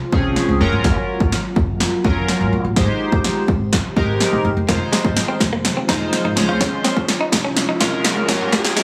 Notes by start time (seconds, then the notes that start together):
Already playing: G#3 F4 C5
0.12 C2 F3 C4 C#4 G#4, kick
0.36 snare
0.49 C#2
0.60 F#1 F#3 A#3 C#4 F4 A#4
0.73 G1
0.84 F#1, kick, snare
1.20 G#1, kick
1.32 snare
1.56 F#1, kick
1.80 snare
2.04 F#1 F#3 C#4 F4 A#4, kick
2.28 snare
2.41 G#1
2.53 A#1
2.65 A1
2.76 G#1 D#3 G#3 D#4 G4 C5, kick, snare
3.12 A#1, kick
3.24 snare
3.48 G#1, kick
3.73 kick, snare
3.96 G#1 G#3 D#4 G4 A#4, kick
4.20 snare
4.33 A#1
4.45 G1
4.57 F#1
4.68 F1 D#3 F3 G#3 A#3 D#4 F4 C5, kick, snare, closed hi-hat, riser
4.93 G#3, snare, closed hi-hat
5.05 G#1, muted clean electric guitar stroke, kick
5.17 snare, closed hi-hat
5.28 C4
5.40 F1, muted clean electric guitar stroke, kick, snare, closed hi-hat
5.53 A#3
5.65 muted clean electric guitar stroke, snare, closed hi-hat
5.77 C4
5.88 F1 G#3 D#4 F4 C5, kick, snare, closed hi-hat
6.13 snare, closed hi-hat
6.25 G#1 D#4
6.36 C#2 G#3 C#4 F4 C5, muted clean electric guitar stroke, snare, closed hi-hat
6.49 D2 F4
6.61 C#2 C#4, kick, snare, closed hi-hat
6.84 C4, snare, closed hi-hat
6.97 C#2, muted clean electric guitar stroke, kick
7.08 snare, closed hi-hat
7.21 D#4
7.32 C2, muted clean electric guitar stroke, kick, snare, closed hi-hat
7.45 C#4
7.57 muted clean electric guitar stroke, snare, closed hi-hat
7.69 D#4
7.80 C2 G#3 C#4 F4 A#4, kick, snare, closed hi-hat
8.04 snare, closed hi-hat
8.17 C#2
8.28 F#1 C#3 F#3 A#3 C#4 F4 A#4, snare, closed hi-hat
8.41 G1
8.52 F#1 A#3, kick, snare, closed hi-hat
8.64 snare
8.77 G#3, snare, closed hi-hat